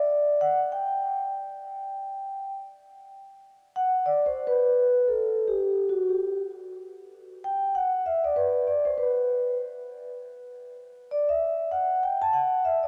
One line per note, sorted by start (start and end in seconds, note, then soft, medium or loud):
0.00 0.42 D5 medium
0.41 0.54 F#5 loud
0.72 2.51 G5 medium
3.76 4.07 F#5 loud
4.06 4.25 D5 medium
4.26 4.46 C5 medium
4.47 5.04 B4 medium
5.08 5.46 A4 medium
5.48 5.91 G4 medium
5.89 6.11 F#4 medium
6.09 6.38 G4 medium
7.44 7.72 G5 loud
7.75 8.06 F#5 medium
8.06 8.23 E5 medium
8.24 8.35 D5 medium
8.36 8.64 B4 medium
8.67 8.86 D5 medium
8.85 8.97 C5 medium
8.98 9.54 B4 medium
11.11 11.28 D5 medium
11.29 11.69 E5 medium
11.71 12.00 F#5 medium
12.03 12.22 G5 loud
12.22 12.33 A5 loud
12.33 12.65 F#5 medium
12.65 12.73 E5 medium
12.83 12.88 D5 medium